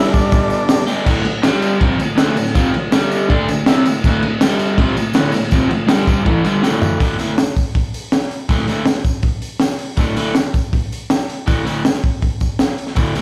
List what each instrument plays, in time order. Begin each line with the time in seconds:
Already playing: overdriven electric guitar G2 D3 G3 B3 D4 G4
0.14 transistor combo organ D4, kick, tambourine
0.32 kick, open hi-hat, tambourine
0.50 tambourine
0.69 snare, open hi-hat, tambourine
0.87 overdriven electric guitar D3 G3 B3 D4 G4, tambourine
0.91 overdriven electric guitar G2
1.06 overdriven electric guitar D2 A2 D3, kick, crash, tambourine
1.25 overdriven electric guitar D2 A2, crash
1.42 overdriven electric guitar G2 D3 G3, snare, tambourine, crash
1.62 tambourine, crash
1.80 overdriven electric guitar F2 C3 F3, kick, crash
1.99 overdriven electric guitar D2 A2, tambourine, crash
2.16 overdriven electric guitar D2 A2 D3, snare, tambourine, crash
2.36 overdriven electric guitar D2 A2, tambourine, crash
2.46 snare
2.55 overdriven electric guitar F2 C3 F3, kick, tambourine, crash
2.74 overdriven electric guitar D2 A2, crash
2.92 overdriven electric guitar G2 D3 G3, snare, tambourine, crash
3.11 tambourine, crash
3.29 overdriven electric guitar D3 A3 D4, kick, crash
3.48 overdriven electric guitar D2 A2, tambourine, crash
3.66 overdriven electric guitar C3 G3 C4, snare, tambourine, crash
3.85 overdriven electric guitar D2 A2, tambourine, crash
4.04 overdriven electric guitar D2 A2 D3, kick, tambourine, crash
4.23 overdriven electric guitar D2 A2, crash
4.41 overdriven electric guitar G2 D3 G3, snare, tambourine, crash
4.59 tambourine, crash
4.78 overdriven electric guitar F2 C3 F3, kick, crash
4.97 overdriven electric guitar D2 A2, tambourine, crash
5.13 overdriven electric guitar D2 A2 D3, snare, tambourine, crash
5.32 overdriven electric guitar D2 A2, snare, tambourine, crash
5.43 snare
5.51 overdriven electric guitar F2 C3 F3, kick, tambourine, crash
5.70 overdriven electric guitar D2 A2, tambourine, crash
5.87 overdriven electric guitar G2 D3 G3, snare, tambourine, crash
6.07 overdriven electric guitar G2 D3 G3, kick, tambourine, crash
6.25 overdriven electric guitar A2 E3 A3, kick, crash
6.43 overdriven electric guitar G2 D3 G3, tambourine, crash
6.61 overdriven electric guitar D2 A2 D3, snare, tambourine
6.82 floor tom, tambourine
7.00 overdriven electric guitar D2 A2 D3, kick, open hi-hat, tambourine
7.18 overdriven electric guitar D2 A2 D3, open hi-hat, tambourine
7.38 snare, open hi-hat, tambourine
7.57 kick, open hi-hat, tambourine
7.75 kick, open hi-hat, tambourine
7.94 open hi-hat, tambourine
8.12 snare, open hi-hat, tambourine
8.31 open hi-hat, tambourine
8.49 overdriven electric guitar D2 A2 D3, kick, open hi-hat, tambourine
8.58 snare
8.68 overdriven electric guitar D2 A2 D3, open hi-hat, tambourine
8.86 snare, open hi-hat, tambourine
9.04 kick, open hi-hat, tambourine
9.23 kick, open hi-hat, tambourine
9.42 open hi-hat, tambourine
9.60 snare, open hi-hat, tambourine
9.79 open hi-hat
9.97 overdriven electric guitar D2 A2 D3, kick, open hi-hat, tambourine
10.16 overdriven electric guitar D2 A2 D3, open hi-hat, tambourine
10.35 snare, open hi-hat, tambourine
10.54 kick, open hi-hat, tambourine
10.73 kick, open hi-hat, tambourine
10.92 open hi-hat, tambourine
11.10 snare, open hi-hat, tambourine
11.29 open hi-hat, tambourine
11.46 overdriven electric guitar D2 A2 D3, kick, open hi-hat, tambourine
11.65 overdriven electric guitar D2 A2 D3, open hi-hat, tambourine
11.85 snare, open hi-hat, tambourine
12.03 kick, open hi-hat
12.22 kick, open hi-hat, tambourine
12.40 kick, open hi-hat, tambourine
12.59 snare, open hi-hat, tambourine
12.78 open hi-hat, tambourine
12.87 snare
12.95 overdriven electric guitar D2 A2 D3, kick, open hi-hat, tambourine
13.14 overdriven electric guitar D2 A2 D3, open hi-hat, tambourine